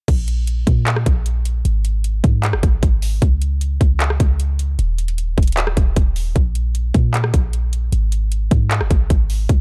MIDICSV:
0, 0, Header, 1, 3, 480
1, 0, Start_track
1, 0, Tempo, 392157
1, 100, Time_signature, 4, 2, 24, 8
1, 11759, End_track
2, 0, Start_track
2, 0, Title_t, "808-style bass"
2, 0, Program_c, 0, 38
2, 100, Note_on_c, 0, 34, 117
2, 791, Note_off_c, 0, 34, 0
2, 820, Note_on_c, 0, 46, 107
2, 1281, Note_off_c, 0, 46, 0
2, 1300, Note_on_c, 0, 34, 104
2, 1991, Note_off_c, 0, 34, 0
2, 2021, Note_on_c, 0, 32, 116
2, 2712, Note_off_c, 0, 32, 0
2, 2740, Note_on_c, 0, 44, 109
2, 3101, Note_on_c, 0, 30, 100
2, 3119, Note_off_c, 0, 44, 0
2, 3215, Note_off_c, 0, 30, 0
2, 3221, Note_on_c, 0, 32, 104
2, 3451, Note_off_c, 0, 32, 0
2, 3460, Note_on_c, 0, 32, 115
2, 3921, Note_off_c, 0, 32, 0
2, 3940, Note_on_c, 0, 37, 117
2, 4632, Note_off_c, 0, 37, 0
2, 4661, Note_on_c, 0, 37, 109
2, 5121, Note_off_c, 0, 37, 0
2, 5141, Note_on_c, 0, 37, 103
2, 5832, Note_off_c, 0, 37, 0
2, 5861, Note_on_c, 0, 27, 119
2, 6552, Note_off_c, 0, 27, 0
2, 6581, Note_on_c, 0, 27, 107
2, 7041, Note_off_c, 0, 27, 0
2, 7061, Note_on_c, 0, 27, 107
2, 7291, Note_off_c, 0, 27, 0
2, 7300, Note_on_c, 0, 27, 109
2, 7761, Note_off_c, 0, 27, 0
2, 7780, Note_on_c, 0, 34, 116
2, 8472, Note_off_c, 0, 34, 0
2, 8500, Note_on_c, 0, 46, 110
2, 8961, Note_off_c, 0, 46, 0
2, 8981, Note_on_c, 0, 34, 98
2, 9672, Note_off_c, 0, 34, 0
2, 9700, Note_on_c, 0, 32, 119
2, 10392, Note_off_c, 0, 32, 0
2, 10419, Note_on_c, 0, 44, 109
2, 10781, Note_on_c, 0, 30, 102
2, 10799, Note_off_c, 0, 44, 0
2, 10895, Note_off_c, 0, 30, 0
2, 10900, Note_on_c, 0, 32, 102
2, 11131, Note_off_c, 0, 32, 0
2, 11141, Note_on_c, 0, 32, 112
2, 11601, Note_off_c, 0, 32, 0
2, 11620, Note_on_c, 0, 37, 114
2, 11759, Note_off_c, 0, 37, 0
2, 11759, End_track
3, 0, Start_track
3, 0, Title_t, "Drums"
3, 100, Note_on_c, 9, 36, 116
3, 100, Note_on_c, 9, 42, 81
3, 100, Note_on_c, 9, 49, 99
3, 223, Note_off_c, 9, 36, 0
3, 223, Note_off_c, 9, 42, 0
3, 223, Note_off_c, 9, 49, 0
3, 340, Note_on_c, 9, 42, 83
3, 462, Note_off_c, 9, 42, 0
3, 580, Note_on_c, 9, 42, 82
3, 702, Note_off_c, 9, 42, 0
3, 819, Note_on_c, 9, 36, 98
3, 820, Note_on_c, 9, 42, 74
3, 942, Note_off_c, 9, 36, 0
3, 943, Note_off_c, 9, 42, 0
3, 1059, Note_on_c, 9, 39, 119
3, 1060, Note_on_c, 9, 42, 77
3, 1180, Note_on_c, 9, 37, 94
3, 1182, Note_off_c, 9, 39, 0
3, 1182, Note_off_c, 9, 42, 0
3, 1300, Note_on_c, 9, 42, 86
3, 1301, Note_on_c, 9, 36, 91
3, 1303, Note_off_c, 9, 37, 0
3, 1423, Note_off_c, 9, 36, 0
3, 1423, Note_off_c, 9, 42, 0
3, 1540, Note_on_c, 9, 42, 78
3, 1662, Note_off_c, 9, 42, 0
3, 1780, Note_on_c, 9, 42, 85
3, 1902, Note_off_c, 9, 42, 0
3, 2020, Note_on_c, 9, 42, 78
3, 2143, Note_off_c, 9, 42, 0
3, 2260, Note_on_c, 9, 42, 81
3, 2382, Note_off_c, 9, 42, 0
3, 2500, Note_on_c, 9, 42, 77
3, 2622, Note_off_c, 9, 42, 0
3, 2740, Note_on_c, 9, 36, 97
3, 2740, Note_on_c, 9, 42, 76
3, 2862, Note_off_c, 9, 36, 0
3, 2862, Note_off_c, 9, 42, 0
3, 2979, Note_on_c, 9, 39, 113
3, 2979, Note_on_c, 9, 42, 76
3, 3099, Note_on_c, 9, 37, 95
3, 3101, Note_off_c, 9, 39, 0
3, 3102, Note_off_c, 9, 42, 0
3, 3220, Note_on_c, 9, 42, 82
3, 3221, Note_on_c, 9, 36, 96
3, 3222, Note_off_c, 9, 37, 0
3, 3342, Note_off_c, 9, 42, 0
3, 3343, Note_off_c, 9, 36, 0
3, 3460, Note_on_c, 9, 36, 102
3, 3460, Note_on_c, 9, 42, 80
3, 3582, Note_off_c, 9, 42, 0
3, 3583, Note_off_c, 9, 36, 0
3, 3700, Note_on_c, 9, 46, 81
3, 3823, Note_off_c, 9, 46, 0
3, 3940, Note_on_c, 9, 42, 81
3, 3941, Note_on_c, 9, 36, 114
3, 4063, Note_off_c, 9, 36, 0
3, 4063, Note_off_c, 9, 42, 0
3, 4181, Note_on_c, 9, 42, 79
3, 4303, Note_off_c, 9, 42, 0
3, 4421, Note_on_c, 9, 42, 83
3, 4543, Note_off_c, 9, 42, 0
3, 4660, Note_on_c, 9, 36, 97
3, 4660, Note_on_c, 9, 42, 73
3, 4783, Note_off_c, 9, 36, 0
3, 4783, Note_off_c, 9, 42, 0
3, 4900, Note_on_c, 9, 39, 118
3, 4901, Note_on_c, 9, 42, 77
3, 5021, Note_on_c, 9, 37, 88
3, 5022, Note_off_c, 9, 39, 0
3, 5023, Note_off_c, 9, 42, 0
3, 5140, Note_on_c, 9, 42, 82
3, 5141, Note_on_c, 9, 36, 93
3, 5143, Note_off_c, 9, 37, 0
3, 5263, Note_off_c, 9, 42, 0
3, 5264, Note_off_c, 9, 36, 0
3, 5381, Note_on_c, 9, 42, 78
3, 5503, Note_off_c, 9, 42, 0
3, 5621, Note_on_c, 9, 42, 80
3, 5743, Note_off_c, 9, 42, 0
3, 5861, Note_on_c, 9, 42, 77
3, 5983, Note_off_c, 9, 42, 0
3, 6101, Note_on_c, 9, 42, 67
3, 6221, Note_off_c, 9, 42, 0
3, 6221, Note_on_c, 9, 42, 67
3, 6341, Note_off_c, 9, 42, 0
3, 6341, Note_on_c, 9, 42, 78
3, 6464, Note_off_c, 9, 42, 0
3, 6580, Note_on_c, 9, 36, 101
3, 6581, Note_on_c, 9, 42, 46
3, 6641, Note_off_c, 9, 42, 0
3, 6641, Note_on_c, 9, 42, 55
3, 6701, Note_off_c, 9, 42, 0
3, 6701, Note_on_c, 9, 42, 65
3, 6703, Note_off_c, 9, 36, 0
3, 6761, Note_off_c, 9, 42, 0
3, 6761, Note_on_c, 9, 42, 75
3, 6819, Note_on_c, 9, 39, 118
3, 6820, Note_off_c, 9, 42, 0
3, 6820, Note_on_c, 9, 42, 75
3, 6940, Note_on_c, 9, 37, 93
3, 6942, Note_off_c, 9, 39, 0
3, 6943, Note_off_c, 9, 42, 0
3, 7061, Note_on_c, 9, 36, 95
3, 7061, Note_on_c, 9, 42, 84
3, 7063, Note_off_c, 9, 37, 0
3, 7183, Note_off_c, 9, 42, 0
3, 7184, Note_off_c, 9, 36, 0
3, 7300, Note_on_c, 9, 42, 77
3, 7301, Note_on_c, 9, 36, 105
3, 7422, Note_off_c, 9, 42, 0
3, 7423, Note_off_c, 9, 36, 0
3, 7540, Note_on_c, 9, 46, 80
3, 7662, Note_off_c, 9, 46, 0
3, 7780, Note_on_c, 9, 42, 78
3, 7781, Note_on_c, 9, 36, 113
3, 7902, Note_off_c, 9, 42, 0
3, 7903, Note_off_c, 9, 36, 0
3, 8020, Note_on_c, 9, 42, 79
3, 8142, Note_off_c, 9, 42, 0
3, 8259, Note_on_c, 9, 42, 81
3, 8382, Note_off_c, 9, 42, 0
3, 8500, Note_on_c, 9, 36, 100
3, 8500, Note_on_c, 9, 42, 72
3, 8622, Note_off_c, 9, 36, 0
3, 8622, Note_off_c, 9, 42, 0
3, 8739, Note_on_c, 9, 39, 113
3, 8740, Note_on_c, 9, 42, 80
3, 8859, Note_on_c, 9, 37, 94
3, 8862, Note_off_c, 9, 39, 0
3, 8862, Note_off_c, 9, 42, 0
3, 8980, Note_on_c, 9, 36, 94
3, 8980, Note_on_c, 9, 42, 84
3, 8981, Note_off_c, 9, 37, 0
3, 9102, Note_off_c, 9, 42, 0
3, 9103, Note_off_c, 9, 36, 0
3, 9220, Note_on_c, 9, 42, 78
3, 9342, Note_off_c, 9, 42, 0
3, 9460, Note_on_c, 9, 42, 83
3, 9582, Note_off_c, 9, 42, 0
3, 9699, Note_on_c, 9, 42, 77
3, 9822, Note_off_c, 9, 42, 0
3, 9940, Note_on_c, 9, 42, 78
3, 10062, Note_off_c, 9, 42, 0
3, 10179, Note_on_c, 9, 42, 79
3, 10302, Note_off_c, 9, 42, 0
3, 10419, Note_on_c, 9, 36, 102
3, 10419, Note_on_c, 9, 42, 72
3, 10541, Note_off_c, 9, 42, 0
3, 10542, Note_off_c, 9, 36, 0
3, 10659, Note_on_c, 9, 39, 116
3, 10659, Note_on_c, 9, 42, 77
3, 10779, Note_on_c, 9, 37, 90
3, 10781, Note_off_c, 9, 39, 0
3, 10782, Note_off_c, 9, 42, 0
3, 10900, Note_on_c, 9, 36, 99
3, 10900, Note_on_c, 9, 42, 84
3, 10901, Note_off_c, 9, 37, 0
3, 11022, Note_off_c, 9, 42, 0
3, 11023, Note_off_c, 9, 36, 0
3, 11140, Note_on_c, 9, 36, 103
3, 11140, Note_on_c, 9, 42, 79
3, 11263, Note_off_c, 9, 36, 0
3, 11263, Note_off_c, 9, 42, 0
3, 11380, Note_on_c, 9, 46, 80
3, 11502, Note_off_c, 9, 46, 0
3, 11619, Note_on_c, 9, 42, 81
3, 11620, Note_on_c, 9, 36, 118
3, 11742, Note_off_c, 9, 36, 0
3, 11742, Note_off_c, 9, 42, 0
3, 11759, End_track
0, 0, End_of_file